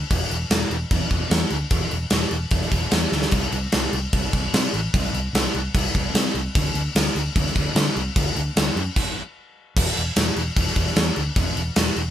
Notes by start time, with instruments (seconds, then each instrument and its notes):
0.11 fingered electric bass E1, kick, crash
0.30 fingered electric bass E1, crash
0.50 fingered electric bass E1, snare, crash
0.70 fingered electric bass E1, crash
0.91 fingered electric bass E1, kick, crash
1.10 fingered electric bass E1, kick, crash
1.30 fingered electric bass E2, snare, crash
1.50 fingered electric bass D2, crash
1.70 fingered electric bass E1, kick, crash
1.91 fingered electric bass E1, crash
2.10 fingered electric bass E1, snare, crash
2.31 fingered electric bass E1, crash
2.50 fingered electric bass E1, kick, crash
2.62 snare
2.71 fingered electric bass E1, kick, crash
2.91 fingered electric bass E2, snare, crash
3.12 fingered electric bass D2, snare
3.22 snare
3.31 fingered electric bass C2, kick, crash
3.52 fingered electric bass C2, crash
3.72 fingered electric bass C2, snare, crash
3.93 fingered electric bass C2, crash
4.13 fingered electric bass C2, kick, crash
4.33 fingered electric bass C2, kick, crash
4.54 fingered electric bass C3, snare, crash
4.73 fingered electric bass A1, crash
4.94 fingered electric bass C2, kick, crash
5.13 fingered electric bass C2, crash
5.33 fingered electric bass C2, snare, crash
5.54 fingered electric bass C2, crash
5.75 fingered electric bass C2, kick, crash
5.95 fingered electric bass C2, kick, crash
6.14 fingered electric bass C3, snare, crash
6.34 fingered electric bass C2, crash
6.55 fingered electric bass D2, kick, crash
6.74 fingered electric bass D2, crash
6.95 fingered electric bass D2, snare, crash
7.15 fingered electric bass D2, crash
7.36 fingered electric bass D2, kick, crash
7.46 snare
7.56 fingered electric bass D2, kick, crash
7.75 fingered electric bass D3, snare, crash
7.96 fingered electric bass C2, crash
8.16 fingered electric bass D2, kick, crash
8.36 fingered electric bass D2, crash
8.56 fingered electric bass D2, snare, crash
8.75 fingered electric bass F#2, crash
8.96 kick, crash
9.76 fingered electric bass E1, kick, crash
9.96 fingered electric bass E1, crash
10.16 fingered electric bass E1, snare, crash
10.36 fingered electric bass E1, crash
10.57 fingered electric bass E1, kick, crash
10.67 snare
10.76 fingered electric bass E1, kick, crash
10.87 snare
10.96 fingered electric bass E2, snare, crash
11.16 fingered electric bass D2, crash
11.36 fingered electric bass E1, kick, crash
11.56 fingered electric bass E1, crash
11.76 fingered electric bass E1, snare, crash
11.96 fingered electric bass E1, crash